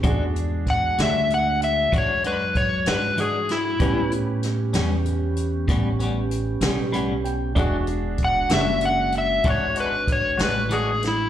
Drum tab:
HH |xxxxxxxxxxxx|xxxxxxxxxxxx|xxxxxxxxxxxx|
SD |--oo-----o-o|--oo-----o--|---o-----o-o|
BD |o-o---o-o---|o-----o-----|o-o---o-o---|